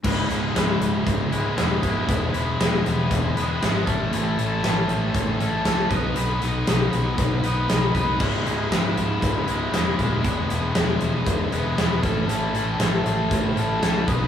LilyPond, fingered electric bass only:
\new Staff \with { instrumentName = "Fingered electric bass" } { \clef bass \time 4/4 \key cis \minor \tempo 4 = 118 cis,,8 cis,,8 cis,,8 cis,,8 cis,,8 cis,,8 e,,8 cis,,8 | e,,8 e,,8 e,,8 e,,8 e,,8 e,,8 gis,,8 a,,8 | a,,8 a,,8 a,,8 a,,8 a,,8 a,,8 cis,8 b,,8 | b,,8 b,,8 b,,8 b,,8 b,,8 b,,8 b,,8 bis,,8 |
cis,,8 cis,,8 cis,,8 cis,,8 cis,,8 cis,,8 e,,8 dis,,8 | e,,8 e,,8 e,,8 e,,8 e,,8 e,,8 e,,8 a,,8 | a,,8 a,,8 a,,8 a,,8 a,,8 a,,8 cis,8 b,,8 | }